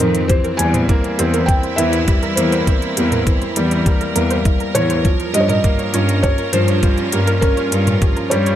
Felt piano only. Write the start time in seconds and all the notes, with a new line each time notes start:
0.00 A#4
0.28 C5
0.57 G#5
1.46 G5
1.76 E5
2.35 C5
4.75 C#5
5.34 D#5
5.40 C#5
5.48 D#5
6.23 C#5
6.53 C5
7.41 A#4
8.30 C#5